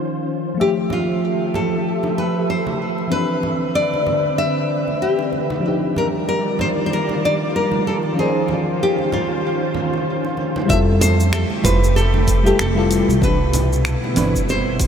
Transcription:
Already playing: D#3 F3 C#4 D#4 F4 C5
0.28 cabasa
0.46 cabasa
0.54 F3 A3
0.59 F3 G4 A4 E5
0.90 F4, low conga
1.54 A4, low conga
2.03 high bongo, high conga
2.18 B4
2.50 C5
2.67 high conga
2.98 high bongo
3.07 E3 C4
3.12 D3 C4 D4 B4
3.16 B4
3.43 high bongo, low conga
3.75 D5
3.93 high conga
4.07 low conga
4.38 E5
4.70 cabasa
4.88 high conga
5.02 G4
5.19 high bongo
5.32 high bongo, high conga, cabasa
5.50 high conga
5.60 F3 D4
5.65 D#3 G3 D#4 F4 G4 D5
5.96 A#4, low conga
6.29 A#4
6.59 C5, low conga
6.86 C5
6.93 A#4
7.09 high bongo, high conga
7.25 D5
7.56 A#4
7.72 high conga
7.87 A4
8.03 high bongo
8.13 F3 C#4
8.17 C#4 D#4 G#4 C5
8.48 high bongo, low conga, cabasa
8.67 cabasa
8.83 G4
8.98 high conga
9.12 F4, low conga
9.44 cabasa
9.62 cabasa
9.74 low conga, cabasa
9.94 high conga, cabasa
10.07 cabasa
10.25 high bongo, cabasa
10.37 high bongo, high conga, cabasa
10.56 high conga, cabasa
10.65 G3 A3 E4 G4, kick
10.69 F2 F4 A4 E5, cabasa
11.01 C5, open hi-hat, low conga, cabasa
11.20 cabasa
11.33 A4, finger snap, cabasa
11.50 high conga
11.62 F1 G3 E4 F4 B4, kick, open hi-hat, low conga, cabasa
11.66 C5
11.84 cabasa
11.96 A4, cabasa
12.14 high bongo, high conga
12.27 kick, open hi-hat, cabasa
12.43 G3 E4 F4 G4, cabasa
12.47 A4
12.59 F1 A4, finger snap, cabasa
12.75 G3 E4 F4 A4
12.91 open hi-hat, cabasa
13.08 C2, high bongo, cabasa
13.20 B2 E3 C4 D4 E4 B4, kick, cabasa
13.53 open hi-hat, high bongo, low conga, cabasa
13.73 cabasa
13.85 finger snap, cabasa
14.04 high conga
14.14 G1 E3 C4 D4, open hi-hat, low conga, cabasa
14.18 B4
14.35 kick, cabasa
14.49 C5, cabasa
14.80 kick, open hi-hat, cabasa

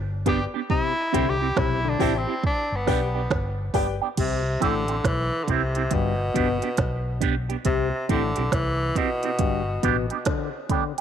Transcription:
Already playing: G1
0.26 B3 D4 G4 B4 D5 G5, kick, closed hi-hat
0.54 B3 D4 G4
0.70 C3 E4, kick
1.12 C2 D3 C4 E4 G4 C5 E5 G5, kick, closed hi-hat
1.30 G4
1.41 C4 E4 G4
1.57 B1 C3 E4, kick, snare
1.85 D3
1.89 D4
1.99 A1 C3 C4 E4 G4 C5 E5 G5, kick, open hi-hat
2.18 C4
2.27 C4 E4 G4 E5 G5
2.44 D4, kick
2.72 G1
2.76 B3
2.86 B1 B3 D4 G4 B4 D5 G5, kick, snare, open hi-hat
3.15 B3 D4 G4
3.31 G1, kick, snare
3.73 G1 B3 D4 G4 B4 D5 G5, kick, open hi-hat
4.01 B3 D4 G4
4.17 C2 C3, kick, closed hi-hat, crash
4.60 A1 A2 D3 C4 E4 G4, kick, closed hi-hat
4.88 C4 E4 G4, closed hi-hat
5.04 B1 E3, kick, snare, closed hi-hat
5.44 C2 D3, kick
5.48 C3 C4 E4 G4, closed hi-hat
5.75 C4 E4 G4, closed hi-hat
5.91 G1 G2 B2, kick, closed hi-hat
6.34 G1 B2 B3 D4 G4, kick, closed hi-hat
6.62 B3 D4 G4, closed hi-hat
6.77 B1, kick, snare, closed hi-hat
7.20 B3 D4 G4, kick, closed hi-hat
7.49 B3 D4 G4, closed hi-hat
7.65 C2 C3, kick, closed hi-hat
8.09 A1 A2 D3 C4 E4 G4, kick, closed hi-hat
8.36 B1 C4 E4 G4, closed hi-hat
8.52 C2 E3, kick, snare, closed hi-hat
8.96 B2 C4 E4 G4, kick, closed hi-hat
9.23 C4 E4 G4, closed hi-hat
9.39 G1 G2, kick, closed hi-hat
9.83 A1 B2 B3 D4 G4, kick, closed hi-hat
10.10 B3 D4 G4, closed hi-hat
10.25 D3, kick, snare, closed hi-hat
10.69 D3 B3 D4 G4, kick, closed hi-hat

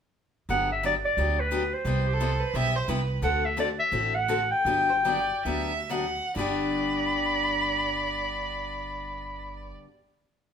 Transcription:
0.49 G1 D3 F#3 B3 D4 G4 F#5
0.72 E5
0.83 D3 F#3 B3 D4 G4 D5
1.05 D5
1.17 D2 D3 F#3 B3 D4 G4
1.40 B4
1.51 D3 F#3 B3 D4 G4
1.73 C5
1.85 C2 C3 G3 B3 E4 G4
2.06 G4
2.13 A4
2.20 C3 G3 B3 E4 G4
2.40 B4
2.54 B1 C3 G3 B3 E4 G4 E5
2.76 C5
2.88 C2 C3 G3 B3 E4 G4 B4
3.22 D2 D3 A3 C4 F#4 A4 F#5
3.45 E5
3.57 D3 A3 C4 F#4 A4 D5
3.79 E5
3.92 A1 D3 A3 C4 F#4 A4
4.15 F#5
4.28 D3 A3 C4 F#4 A4
4.51 G5
4.65 G1 D3 F#3 B3 D4 G4
4.89 C5
5.04 D3 F#3 B3 D4 G4 D5
5.45 D2 D3 F#3 B3 D4 G4 E5
5.90 D3 F#3 B3 D4 G4 F#5
6.35 G1 G2 D3 B3 D4 D5 B5
6.39 G4

